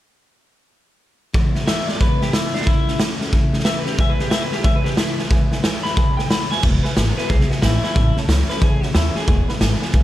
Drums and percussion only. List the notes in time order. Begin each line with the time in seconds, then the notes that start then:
1.34 kick, snare
1.55 snare
1.68 snare, hi-hat pedal
1.89 snare
2.01 kick, snare
2.22 snare
2.33 snare, hi-hat pedal
2.55 snare
2.61 snare
2.67 kick, snare
2.88 snare
3.00 snare, hi-hat pedal
3.21 snare
3.33 kick, snare
3.53 snare
3.59 snare
3.65 snare, hi-hat pedal
3.86 snare
3.98 kick, snare
4.19 snare
4.31 snare, hi-hat pedal
4.52 snare
4.64 kick, snare
4.85 snare
4.97 snare, hi-hat pedal
5.19 snare
5.31 kick, snare
5.52 snare
5.64 snare, hi-hat pedal
5.85 snare
5.97 kick, snare
6.19 snare
6.31 snare, hi-hat pedal
6.52 snare
6.63 kick, snare, crash
6.85 snare
6.97 snare, hi-hat pedal
7.18 snare
7.30 kick, snare
7.41 snare
7.51 snare
7.62 snare, hi-hat pedal
7.84 snare
7.95 kick, snare
8.17 snare
8.29 snare, hi-hat pedal
8.50 snare
8.61 kick, snare
8.83 snare
8.95 snare, hi-hat pedal
9.16 snare
9.28 kick, snare
9.49 snare
9.61 snare, hi-hat pedal
9.82 snare
9.94 kick, snare